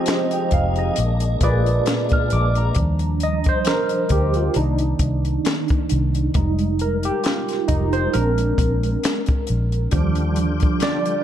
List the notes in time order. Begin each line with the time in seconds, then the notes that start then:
Already playing: F3 G#3 C4 D#4 G4 G#4 D#5
0.06 snare, clap, closed hi-hat
0.31 G5, closed hi-hat
0.51 F1 F5, kick, closed hi-hat
0.76 D#5, closed hi-hat
0.96 A#1 G#3 A#3 D4, closed hi-hat
1.20 closed hi-hat
1.41 A#1 A#2 A#3 G#4 B4 D5, kick, closed hi-hat
1.66 closed hi-hat
1.86 snare, clap, closed hi-hat
2.09 F6, kick, closed hi-hat
2.30 A#1 D6, closed hi-hat
2.55 A#5, closed hi-hat
2.74 D#2 F3 G3 D4, kick, closed hi-hat
2.99 closed hi-hat
3.20 D#5, closed hi-hat
3.44 kick, closed hi-hat
3.49 C5
3.65 A#4, snare, clap, closed hi-hat
3.89 closed hi-hat
4.09 D2 G4, kick, closed hi-hat
4.34 F4, closed hi-hat
4.54 C2 D#3 A#3 D4 D#4, closed hi-hat
4.78 closed hi-hat
4.99 C2, kick, closed hi-hat
5.25 closed hi-hat
5.45 snare, clap, closed hi-hat
5.68 kick, closed hi-hat
5.89 C2, closed hi-hat
6.15 closed hi-hat
6.34 F1 G3 G#3 D#4, kick, closed hi-hat
6.59 closed hi-hat
6.79 A#4, closed hi-hat
7.03 G4, closed hi-hat
7.24 F4, snare, clap, closed hi-hat
7.48 snare, closed hi-hat
7.68 F1 D#4, kick, closed hi-hat
7.93 C5, closed hi-hat
8.13 A#1 G#3 C4 D4 A#4, closed hi-hat
8.38 closed hi-hat
8.58 A#1, kick, closed hi-hat
8.83 closed hi-hat
9.03 snare, clap, closed hi-hat
9.26 kick, closed hi-hat
9.47 A#1, closed hi-hat
9.72 closed hi-hat
9.91 D#2 D3 F3 G3 D4 F4 G4, kick, closed hi-hat
10.15 closed hi-hat
10.36 closed hi-hat
10.60 kick, closed hi-hat
10.80 D5, snare, clap, closed hi-hat
11.05 closed hi-hat